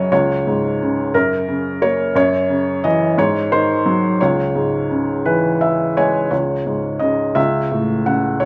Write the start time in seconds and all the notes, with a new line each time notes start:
Already playing: F#2 C#3 F#3 C#5 D#5
0.12 C#2 C#5
0.47 G#2
0.83 C#3
1.14 F#2 A#4
1.48 C#3
1.82 A#3 C#5
2.15 F#2 C#5
2.49 C#3
2.84 E3 D#5
3.18 G#2 C#5
3.52 D#3 C5
3.86 F#3
4.21 C#2 C#5
4.56 G#2
4.91 C#3
5.25 E3 B4
5.61 E5
5.97 G#3 C#5 G#5
6.31 C#2 C#5
6.66 G#2
6.99 C#3 D#5
7.35 C#2 E5
7.72 A2
8.06 C#3 F#5
8.40 C#5